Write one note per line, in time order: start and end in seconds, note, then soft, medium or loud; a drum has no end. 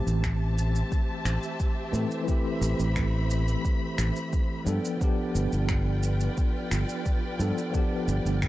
0.00 1.88 E3 medium
0.00 1.90 A3 medium
0.00 1.91 C4 medium
0.00 1.92 G4 medium
0.00 4.63 G4 medium
0.00 4.63 C5 medium
0.00 4.63 E5 medium
0.00 2.25 A5 medium
0.07 0.82 A1 medium
0.07 shaker soft
0.24 finger snap medium
0.24 kick medium
0.24 shaker soft
0.58 shaker medium
0.76 shaker soft
0.92 kick loud
0.92 shaker soft
1.25 1.36 A1 medium
1.25 finger snap medium
1.25 shaker medium
1.43 shaker soft
1.60 kick loud
1.60 shaker soft
1.92 2.04 A2 medium
1.92 2.23 E3 medium
1.92 2.24 A3 medium
1.92 2.24 C4 medium
1.92 2.25 A4 medium
1.92 shaker medium
2.11 shaker soft
2.24 4.61 E3 medium
2.24 4.62 A3 medium
2.24 4.64 B5 medium
2.24 shaker soft
2.28 4.63 C4 medium
2.28 4.64 G4 loud
2.28 kick loud
2.61 2.73 A1 medium
2.61 shaker medium
2.79 3.54 A1 medium
2.79 shaker soft
2.96 finger snap medium
2.96 kick loud
2.96 shaker soft
3.30 shaker medium
3.48 shaker soft
3.65 kick loud
3.65 shaker soft
3.98 4.09 A1 medium
3.98 finger snap medium
3.98 shaker medium
4.16 shaker soft
4.33 kick loud
4.33 shaker soft
4.65 4.78 G2 medium
4.65 4.96 F3 medium
4.65 4.97 B3 medium
4.65 4.97 D4 medium
4.65 8.48 F4 medium
4.65 4.98 A4 loud
4.65 8.48 B4 medium
4.65 8.48 D5 medium
4.65 8.48 G5 medium
4.65 shaker medium
4.85 shaker soft
4.97 7.34 F3 medium
4.97 7.35 B3 medium
5.01 7.36 D4 medium
5.01 7.37 G4 medium
5.01 kick loud
5.01 shaker soft
5.35 5.46 G1 medium
5.35 shaker medium
5.52 6.27 G1 medium
5.52 shaker soft
5.69 finger snap medium
5.69 kick medium
5.69 shaker soft
6.03 shaker medium
6.20 shaker soft
6.37 kick loud
6.37 shaker soft
6.71 6.82 G1 medium
6.71 finger snap medium
6.71 shaker medium
6.89 shaker soft
7.06 kick loud
7.06 shaker soft
7.38 7.50 G2 medium
7.38 7.69 F3 medium
7.38 7.70 B3 medium
7.38 7.70 D4 medium
7.38 7.71 A4 loud
7.38 shaker medium
7.58 shaker soft
7.70 8.48 F3 medium
7.70 8.48 B3 medium
7.70 kick loud
7.70 shaker soft
7.75 8.48 D4 medium
7.75 8.48 G4 medium
8.08 8.19 G1 medium
8.08 shaker medium
8.25 8.48 G1 medium
8.25 shaker soft
8.42 finger snap medium
8.42 kick loud
8.42 shaker soft